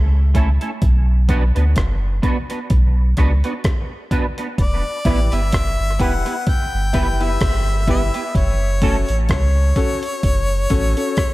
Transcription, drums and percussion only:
0.35 kick, closed hi-hat
0.61 closed hi-hat
0.82 kick, closed hi-hat
1.29 kick, closed hi-hat
1.56 closed hi-hat
1.76 kick, cross-stick, closed hi-hat
2.23 kick, closed hi-hat
2.50 closed hi-hat
2.70 kick, closed hi-hat
3.17 kick, cross-stick, closed hi-hat
3.44 closed hi-hat
3.64 kick, cross-stick, closed hi-hat
4.11 kick, closed hi-hat
4.38 closed hi-hat
4.58 kick, closed hi-hat
5.05 kick, closed hi-hat
5.32 closed hi-hat
5.52 kick, cross-stick, closed hi-hat
6.00 kick, closed hi-hat
6.26 closed hi-hat
6.47 kick, closed hi-hat
6.94 kick, closed hi-hat
7.21 closed hi-hat
7.41 kick, cross-stick, closed hi-hat
7.88 kick, closed hi-hat
8.14 closed hi-hat
8.35 kick, closed hi-hat
8.82 kick, closed hi-hat
9.09 closed hi-hat
9.29 kick, cross-stick, closed hi-hat
9.76 kick, closed hi-hat
10.03 closed hi-hat
10.23 kick, closed hi-hat
10.70 kick, closed hi-hat
10.97 closed hi-hat
11.17 kick, cross-stick, closed hi-hat

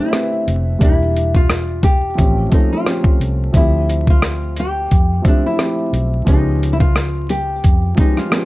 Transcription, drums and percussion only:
0.13 cross-stick, closed hi-hat
0.48 closed hi-hat
0.81 kick, closed hi-hat
1.16 closed hi-hat
1.34 kick
1.50 cross-stick, closed hi-hat
1.83 kick, closed hi-hat
2.18 kick, closed hi-hat
2.52 kick, closed hi-hat
2.86 cross-stick, closed hi-hat
3.04 kick
3.21 closed hi-hat
3.54 kick, closed hi-hat
3.90 closed hi-hat
4.07 kick
4.22 cross-stick, closed hi-hat
4.56 closed hi-hat
4.91 kick, closed hi-hat
5.25 kick, closed hi-hat
5.59 cross-stick, closed hi-hat
5.94 closed hi-hat
6.27 kick, closed hi-hat
6.63 closed hi-hat
6.80 kick
6.96 cross-stick, closed hi-hat
7.29 closed hi-hat
7.64 kick, closed hi-hat
7.97 kick, closed hi-hat
8.17 cross-stick
8.32 cross-stick, closed hi-hat

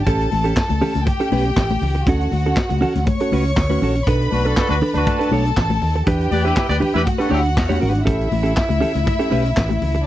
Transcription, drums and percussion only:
0.07 kick, closed hi-hat, muted conga
0.21 closed hi-hat
0.31 open hi-hat, high conga
0.45 closed hi-hat
0.57 kick, snare, clap
0.70 closed hi-hat, high conga
0.81 open hi-hat, low conga
0.95 snare, closed hi-hat, high conga
1.07 kick, closed hi-hat, muted conga, high conga
1.20 closed hi-hat
1.32 open hi-hat, muted conga, high conga
1.45 closed hi-hat
1.57 kick, snare, clap, muted conga
1.71 closed hi-hat, high conga
1.82 open hi-hat, muted conga, low conga
1.95 closed hi-hat
2.06 kick, closed hi-hat
2.21 closed hi-hat
2.32 open hi-hat, high conga
2.45 closed hi-hat
2.56 kick, snare, clap, muted conga
2.70 closed hi-hat, high conga
2.82 open hi-hat, muted conga, low conga
2.95 snare, closed hi-hat, high conga
3.06 kick, closed hi-hat, muted conga, high conga
3.20 closed hi-hat
3.32 open hi-hat, high conga
3.45 closed hi-hat
3.57 kick, snare, clap, muted conga
3.69 closed hi-hat, high conga
3.82 open hi-hat, muted conga, low conga
3.95 closed hi-hat
4.07 kick, closed hi-hat
4.21 closed hi-hat
4.32 open hi-hat, high conga
4.46 closed hi-hat
4.57 kick, snare, clap, muted conga
4.69 closed hi-hat, high conga
4.81 open hi-hat, muted conga, low conga
4.94 snare, closed hi-hat, high conga
5.06 kick, closed hi-hat, muted conga, high conga
5.21 closed hi-hat
5.31 open hi-hat, high conga
5.45 closed hi-hat
5.57 kick, snare, clap
5.70 closed hi-hat, high conga
5.82 open hi-hat, muted conga, low conga
5.95 closed hi-hat
6.07 kick, closed hi-hat, muted conga
6.21 closed hi-hat
6.32 open hi-hat, muted conga, high conga
6.45 closed hi-hat
6.56 kick, snare, clap
6.70 closed hi-hat, high conga
6.82 open hi-hat, muted conga, low conga
6.95 closed hi-hat, high conga
7.07 kick, closed hi-hat, high conga
7.21 closed hi-hat
7.31 open hi-hat, high conga
7.46 closed hi-hat
7.57 kick, snare, clap, muted conga
7.70 closed hi-hat, high conga
7.82 open hi-hat, low conga
7.95 closed hi-hat
8.07 kick, closed hi-hat, muted conga
8.21 closed hi-hat
8.32 open hi-hat, muted conga, high conga
8.46 closed hi-hat
8.57 kick, snare, clap
8.70 closed hi-hat, high conga
8.82 open hi-hat, muted conga, low conga
8.95 snare, closed hi-hat, high conga
9.07 kick, closed hi-hat, muted conga, high conga
9.21 closed hi-hat
9.32 open hi-hat, muted conga, high conga
9.46 closed hi-hat
9.57 kick, snare, clap, muted conga
9.71 closed hi-hat, high conga
9.82 open hi-hat, low conga
9.95 closed hi-hat

